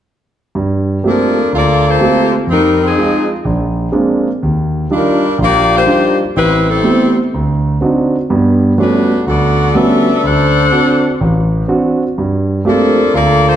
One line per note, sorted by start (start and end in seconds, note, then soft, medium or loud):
0.55 0.97 G2 medium
1.04 1.37 A3 soft
1.04 1.37 A#3 soft
1.04 1.37 C4 soft
1.04 1.38 F4 soft
1.04 1.38 G4 soft
1.04 1.51 A4 medium
1.08 1.51 F3 medium
1.08 1.51 D4 medium
1.08 1.51 A#4 medium
1.52 1.94 D2 medium
1.52 1.86 A#3 medium
1.52 1.86 F4 medium
1.52 1.86 A4 medium
1.52 1.86 D5 medium
1.87 2.34 A#3 medium
1.87 2.34 F4 medium
1.87 2.34 A4 medium
1.87 2.34 C5 medium
2.00 2.34 A3 medium
2.00 2.34 A#3 soft
2.00 2.34 C4 soft
2.00 2.34 F4 soft
2.00 2.34 G4 medium
2.47 2.90 F2 medium
2.47 2.79 G3 medium
2.47 2.80 C4 medium
2.51 2.80 D#4 medium
2.51 2.80 A#4 loud
2.83 3.30 F3 medium
2.83 3.30 C4 medium
2.83 3.30 D#4 medium
2.83 3.31 G#4 medium
2.97 3.31 G#3 soft
2.97 3.31 D#4 soft
2.97 3.31 F4 medium
3.45 3.87 A#1 medium
3.92 4.26 G#3 medium
3.92 4.27 A#3 soft
3.92 4.27 C4 soft
3.92 4.27 D4 medium
4.43 4.84 D#2 medium
4.90 5.24 G3 soft
4.90 5.37 G3 medium
4.90 5.24 D4 soft
4.90 5.37 D4 medium
4.90 5.24 D#4 soft
4.90 5.24 F4 medium
4.90 5.37 F4 medium
4.90 5.37 A#4 medium
5.38 5.81 A#1 medium
5.43 5.73 A#3 loud
5.43 5.73 F4 medium
5.43 5.73 G4 medium
5.43 5.73 D5 loud
5.76 6.19 A#3 medium
5.76 6.19 F4 medium
5.76 6.19 G4 medium
5.76 6.19 C5 loud
5.87 6.21 G3 soft
5.87 6.21 D4 soft
5.87 6.21 D#4 soft
5.87 6.21 F4 medium
6.36 6.78 A1 medium
6.36 6.67 G3 medium
6.36 6.67 C4 medium
6.36 6.66 E4 medium
6.36 6.66 B4 loud
6.68 7.16 G3 medium
6.68 7.17 C4 medium
6.68 7.17 E4 medium
6.68 7.17 A4 medium
6.83 7.17 A3 soft
6.83 7.18 B3 soft
6.83 7.18 C4 soft
6.83 7.18 G4 medium
7.34 7.75 D2 medium
7.81 8.15 C4 soft
7.81 8.15 D4 soft
7.81 8.15 D#4 soft
7.81 8.15 F#4 medium
8.30 8.72 G2 medium
8.30 8.72 B3 medium
8.78 9.12 G3 soft
8.78 9.12 A3 soft
8.78 9.24 A3 medium
8.78 9.12 B3 soft
8.78 9.12 C#4 soft
8.78 9.24 D4 medium
8.78 9.12 F#4 soft
8.78 9.24 F#4 medium
8.78 9.24 B4 medium
9.26 9.68 D2 medium
9.26 9.76 B3 medium
9.26 9.76 F#4 medium
9.26 9.74 A4 medium
9.26 9.76 D5 medium
9.75 10.08 G3 soft
9.75 10.09 A3 soft
9.75 10.09 B3 soft
9.75 10.09 C#4 soft
9.75 10.23 D4 medium
9.75 10.09 F#4 medium
9.75 10.23 A4 medium
9.75 10.23 B4 medium
9.75 10.23 E5 medium
10.23 10.65 D2 medium
10.23 11.21 D4 medium
10.23 11.21 A4 medium
10.23 11.21 C5 medium
10.23 11.21 F#5 loud
10.71 11.05 C4 soft
10.71 11.05 D4 soft
10.71 11.05 F#4 soft
11.20 11.62 A1 medium
11.68 12.02 C4 soft
11.68 12.02 D4 soft
11.68 12.02 F#4 medium
12.18 12.59 G2 medium
12.65 13.11 F3 medium
12.65 12.98 A3 soft
12.65 12.99 A#3 soft
12.65 12.99 C4 soft
12.65 13.11 D4 medium
12.65 12.99 F4 soft
12.65 12.99 G4 soft
12.65 13.11 A4 medium
12.65 13.11 A#4 medium
13.14 13.55 D2 medium
13.14 13.45 A#3 loud
13.14 13.46 F4 medium
13.14 13.46 A4 loud
13.14 13.46 D5 loud
13.47 13.56 A#3 medium
13.47 13.56 F4 medium
13.47 13.56 A4 medium
13.47 13.56 C5 medium